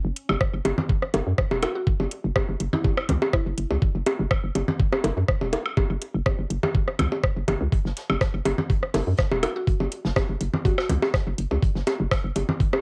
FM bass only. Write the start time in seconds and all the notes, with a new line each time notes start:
0.05 F#1
0.29 F#1
0.54 F#1
0.65 F#1
1.14 F#1
1.27 F#2
1.51 E1
2.00 F#1
2.24 F#1
2.49 F#1
2.60 F#1
3.09 C#2
3.46 F#1
3.58 F#1
3.71 C#2
3.95 F#1
4.19 F#1
4.44 F#1
4.55 F#1
5.04 F#1
5.17 F#2
5.41 E1
5.90 F#1
6.14 F#1
6.39 F#1
6.50 F#1
6.99 C#2
7.37 F#1
7.48 F#1
7.61 C#2
7.85 F#1
8.10 F#1
8.34 F#1
8.46 F#1
8.94 F#1
9.07 F#2
9.32 E1
9.80 F#1
10.05 F#1
10.29 F#1
10.41 F#1
10.89 C#2
11.27 F#1
11.38 F#1
11.51 C#2
11.75 F#1
12.00 F#1
12.24 F#1
12.36 F#1